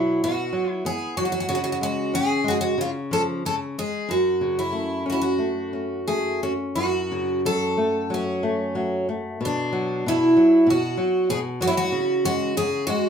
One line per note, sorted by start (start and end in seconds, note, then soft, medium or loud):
0.00 0.22 B2 medium
0.00 0.22 F#3 soft
0.00 0.19 E4 medium
0.24 0.53 B2 medium
0.24 0.71 F#4 medium
0.53 0.82 F#3 soft
0.71 0.86 E4 medium
0.85 1.14 B3 soft
0.85 1.17 G#4 medium
1.17 1.48 F#3 medium
1.17 1.23 F#4 medium
1.25 1.31 F#4 medium
1.32 1.38 F#4 medium
1.40 1.46 F#4 medium
1.49 2.74 C#3 medium
1.49 1.54 F#4 medium
1.55 1.61 F#4 medium
1.64 1.69 F#4 medium
1.72 1.77 F#4 medium
1.81 2.12 G#3 soft
1.81 2.14 F#4 medium
2.14 2.44 C#4 medium
2.14 2.47 G#4 medium
2.44 2.76 G#3 soft
2.48 2.53 F#4 medium
2.48 2.58 G#4 medium
2.61 2.79 F#4 medium
2.78 3.44 C#3 medium
2.78 2.89 F4 medium
3.11 3.42 F3 soft
3.11 3.21 A4 medium
3.45 3.76 C#3 soft
3.45 3.55 A4 medium
3.78 4.08 G#3 soft
3.78 4.10 G#4 medium
4.09 6.73 F#2 medium
4.09 4.59 F#4 medium
4.41 4.72 C#3 soft
4.59 5.03 E4 medium
4.72 5.04 A3 soft
5.06 5.38 C#4 soft
5.06 5.14 F#4 medium
5.12 5.19 E4 medium
5.22 6.39 F#4 medium
5.39 5.72 A3 soft
5.73 6.07 C#4 soft
6.08 6.42 A3 soft
6.08 6.43 G#4 medium
6.43 6.76 C#4 soft
6.43 6.52 F#4 medium
6.75 9.36 F#2 soft
6.75 7.40 F#4 medium
7.11 7.44 C#3 soft
7.45 7.77 F#3 soft
7.45 8.13 A4 medium
7.77 8.09 A3 soft
8.10 8.42 F#3 soft
8.14 9.05 C#4 medium
8.43 8.74 A3 soft
8.75 9.07 F#3 soft
9.09 9.40 A3 soft
9.41 10.05 B2 medium
9.45 10.08 D4 medium
9.72 10.03 F#3 soft
10.06 10.36 B2 soft
10.06 10.70 E4 medium
10.37 10.66 F#3 soft
10.67 10.96 B2 medium
10.67 11.30 F#4 medium
10.97 11.28 F#3 medium
11.29 11.60 B2 medium
11.29 11.38 G#4 medium
11.61 11.91 F#3 medium
11.61 11.67 F#4 medium
11.67 11.74 E4 medium
11.77 12.24 F#4 medium
11.92 12.55 C#3 medium
12.25 12.55 G#3 medium
12.25 12.57 F#4 medium
12.57 12.87 C#3 medium
12.57 12.86 G#4 medium
12.87 13.09 G#3 medium
12.87 13.09 F#4 medium